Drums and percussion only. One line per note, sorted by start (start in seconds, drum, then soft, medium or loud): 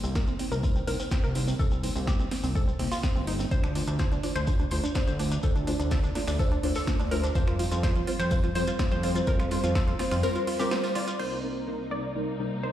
0.04 shekere medium
0.15 kick loud
0.15 snare loud
0.15 tambourine medium
0.15 shekere medium
0.27 shekere soft
0.39 open hi-hat loud
0.39 tambourine medium
0.52 shekere medium
0.63 kick loud
0.63 tambourine medium
0.63 shekere medium
0.75 shekere soft
0.87 open hi-hat loud
0.87 tambourine medium
1.00 shekere medium
1.11 kick loud
1.11 snare loud
1.11 tambourine medium
1.11 shekere medium
1.24 shekere soft
1.35 open hi-hat loud
1.35 tambourine medium
1.48 shekere medium
1.59 kick loud
1.59 tambourine medium
1.59 shekere medium
1.71 shekere soft
1.83 open hi-hat loud
1.83 tambourine medium
1.96 shekere medium
2.07 kick loud
2.07 snare loud
2.07 tambourine medium
2.07 shekere medium
2.19 shekere soft
2.31 snare medium
2.31 open hi-hat loud
2.31 tambourine medium
2.43 open hi-hat medium
2.43 shekere medium
2.55 kick loud
2.55 tambourine medium
2.55 shekere medium
2.68 shekere soft
2.79 open hi-hat medium
2.79 open hi-hat loud
2.92 snare medium
2.92 open hi-hat medium
2.92 shekere medium
3.03 kick loud
3.03 snare loud
3.03 tambourine medium
3.03 shekere medium
3.16 shekere soft
3.27 open hi-hat loud
3.27 tambourine medium
3.39 snare soft
3.39 shekere medium
3.51 kick loud
3.51 closed hi-hat soft
3.51 tambourine medium
3.51 shekere medium
3.64 finger snap medium
3.64 closed hi-hat soft
3.64 shekere soft
3.75 open hi-hat loud
3.75 tambourine medium
3.87 closed hi-hat soft
3.87 shekere medium
3.99 kick loud
3.99 snare loud
3.99 closed hi-hat soft
3.99 tambourine medium
3.99 shekere medium
4.12 closed hi-hat soft
4.12 shekere soft
4.23 open hi-hat loud
4.23 tambourine medium
4.35 finger snap medium
4.35 closed hi-hat soft
4.35 shekere medium
4.47 kick loud
4.47 closed hi-hat soft
4.47 tambourine medium
4.47 shekere medium
4.59 closed hi-hat soft
4.59 shekere soft
4.71 open hi-hat loud
4.71 tambourine medium
4.83 closed hi-hat soft
4.83 shekere medium
4.95 kick loud
4.95 snare loud
4.95 closed hi-hat medium
4.95 tambourine medium
4.95 shekere medium
5.08 closed hi-hat soft
5.08 shekere soft
5.19 open hi-hat loud
5.19 tambourine medium
5.31 closed hi-hat soft
5.31 shekere medium
5.43 kick loud
5.43 closed hi-hat medium
5.43 tambourine medium
5.43 shekere medium
5.55 closed hi-hat soft
5.55 shekere soft
5.67 open hi-hat medium
5.67 tambourine medium
5.80 closed hi-hat soft
5.80 shekere medium
5.91 kick loud
5.91 snare loud
5.91 closed hi-hat soft
5.91 tambourine medium
5.91 shekere medium
6.04 closed hi-hat soft
6.04 shekere soft
6.15 snare medium
6.15 open hi-hat loud
6.15 tambourine medium
6.28 finger snap medium
6.28 open hi-hat medium
6.28 shekere medium
6.39 kick loud
6.39 closed hi-hat soft
6.39 tambourine medium
6.39 shekere medium
6.51 closed hi-hat soft
6.51 shekere soft
6.63 open hi-hat loud
6.63 open hi-hat medium
6.75 snare medium
6.75 open hi-hat medium
6.75 shekere medium
6.87 kick loud
6.87 snare loud
6.87 tambourine medium
6.87 shekere medium
7.00 closed hi-hat soft
7.00 shekere soft
7.11 open hi-hat loud
7.11 tambourine medium
7.24 snare soft
7.24 closed hi-hat soft
7.24 shekere medium
7.35 kick loud
7.35 closed hi-hat medium
7.35 tambourine medium
7.35 shekere medium
7.47 finger snap medium
7.47 closed hi-hat soft
7.47 shekere soft
7.59 open hi-hat loud
7.59 tambourine medium
7.72 closed hi-hat medium
7.72 shekere medium
7.83 kick loud
7.83 snare loud
7.83 closed hi-hat soft
7.83 tambourine medium
7.83 shekere medium
7.96 closed hi-hat soft
7.96 shekere soft
8.07 open hi-hat loud
8.07 tambourine medium
8.20 finger snap medium
8.20 closed hi-hat medium
8.20 shekere medium
8.31 kick loud
8.31 closed hi-hat medium
8.31 tambourine medium
8.31 shekere medium
8.43 closed hi-hat soft
8.43 shekere soft
8.55 open hi-hat loud
8.55 tambourine medium
8.67 closed hi-hat medium
8.67 shekere medium
8.79 kick loud
8.79 snare loud
8.79 closed hi-hat medium
8.79 tambourine medium
8.79 shekere medium
8.91 closed hi-hat soft
8.91 shekere soft
9.03 open hi-hat medium
9.03 tambourine medium
9.16 closed hi-hat medium
9.16 shekere medium
9.27 kick loud
9.27 closed hi-hat medium
9.27 tambourine medium
9.27 shekere medium
9.40 finger snap medium
9.40 closed hi-hat soft
9.40 shekere soft
9.51 open hi-hat medium
9.51 tambourine medium
9.64 closed hi-hat medium
9.64 shekere medium
9.75 kick loud
9.75 snare loud
9.75 closed hi-hat medium
9.75 tambourine medium
9.75 shekere medium
9.88 closed hi-hat soft
9.88 shekere soft
9.99 snare medium
9.99 open hi-hat loud
9.99 tambourine medium
10.11 finger snap medium
10.11 open hi-hat medium
10.11 shekere medium
10.23 closed hi-hat medium
10.23 tambourine medium
10.23 shekere medium
10.35 closed hi-hat soft
10.35 shekere soft
10.47 open hi-hat loud
10.47 open hi-hat medium
10.59 snare soft
10.59 open hi-hat medium
10.59 shekere medium
10.71 snare loud
10.71 closed hi-hat medium
10.71 tambourine medium
10.71 shekere medium
10.83 snare loud
10.83 closed hi-hat soft
10.83 tambourine medium
10.83 shekere soft
10.95 open hi-hat loud
10.95 tambourine medium
11.08 snare soft
11.08 closed hi-hat medium
11.08 shekere medium
11.19 crash medium